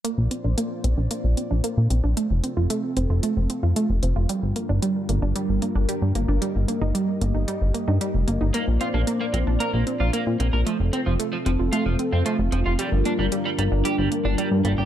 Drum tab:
HH |xxxxxxxx|xxxxxxxx|xxxxxxxx|xxxxxxxx|

HH |xxxxxxxx|xxxxxxxx|xxxxxxxx|